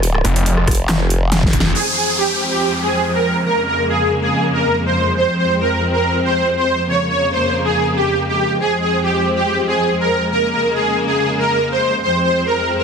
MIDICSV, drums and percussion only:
0, 0, Header, 1, 2, 480
1, 0, Start_track
1, 0, Key_signature, -4, "minor"
1, 0, Tempo, 428571
1, 36, Time_signature, 4, 2, 24, 8
1, 14377, End_track
2, 0, Start_track
2, 0, Title_t, "Drums"
2, 36, Note_on_c, 9, 42, 87
2, 148, Note_off_c, 9, 42, 0
2, 163, Note_on_c, 9, 37, 57
2, 275, Note_off_c, 9, 37, 0
2, 276, Note_on_c, 9, 42, 59
2, 388, Note_off_c, 9, 42, 0
2, 403, Note_on_c, 9, 42, 41
2, 515, Note_off_c, 9, 42, 0
2, 517, Note_on_c, 9, 42, 87
2, 629, Note_off_c, 9, 42, 0
2, 643, Note_on_c, 9, 37, 55
2, 755, Note_off_c, 9, 37, 0
2, 756, Note_on_c, 9, 36, 60
2, 757, Note_on_c, 9, 37, 57
2, 757, Note_on_c, 9, 42, 53
2, 799, Note_off_c, 9, 42, 0
2, 799, Note_on_c, 9, 42, 73
2, 837, Note_off_c, 9, 42, 0
2, 837, Note_on_c, 9, 42, 87
2, 868, Note_off_c, 9, 36, 0
2, 869, Note_off_c, 9, 37, 0
2, 949, Note_off_c, 9, 42, 0
2, 996, Note_on_c, 9, 38, 119
2, 996, Note_on_c, 9, 39, 95
2, 996, Note_on_c, 9, 42, 86
2, 1108, Note_off_c, 9, 38, 0
2, 1108, Note_off_c, 9, 39, 0
2, 1108, Note_off_c, 9, 42, 0
2, 1236, Note_on_c, 9, 42, 59
2, 1348, Note_off_c, 9, 42, 0
2, 1476, Note_on_c, 9, 38, 71
2, 1476, Note_on_c, 9, 42, 57
2, 1588, Note_off_c, 9, 38, 0
2, 1588, Note_off_c, 9, 42, 0
2, 1602, Note_on_c, 9, 36, 102
2, 1636, Note_on_c, 9, 38, 83
2, 1714, Note_off_c, 9, 36, 0
2, 1716, Note_on_c, 9, 36, 61
2, 1716, Note_on_c, 9, 42, 84
2, 1748, Note_off_c, 9, 38, 0
2, 1796, Note_on_c, 9, 38, 101
2, 1828, Note_off_c, 9, 36, 0
2, 1828, Note_off_c, 9, 42, 0
2, 1908, Note_off_c, 9, 38, 0
2, 1956, Note_on_c, 9, 49, 79
2, 2068, Note_off_c, 9, 49, 0
2, 14377, End_track
0, 0, End_of_file